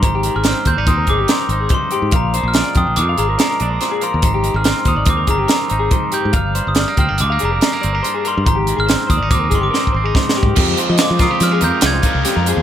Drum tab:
CC |------------------------------|------------------------------|------------------------------|------------------------------|
HH |x--x--x--x--x--x--x--x--x--x--|x--x--x--x--x--x--x--x--x--x--|x--x--x--x--x--x--x--x--x--x--|x--x--x--x--x--x--x--x--x--x--|
SD |------o-----------o-----------|------o-----------o-----o-----|------o-----------o-----------|------o-----------o-----------|
BD |o--------o--o--o--------o-----|o--------o--------------------|o--------o--o--o--------o-----|o--------o--------------------|

CC |------------------------------|x-----------------------------|
HH |x--x--x--x--x--x--------------|---x--x--x--x--x--x--x--x--x--|
SD |------o-----------o-----o-o---|------o--o--o-----o-----o-----|
BD |o--------o--o--o----o---o---o-|o--------o-----------o--------|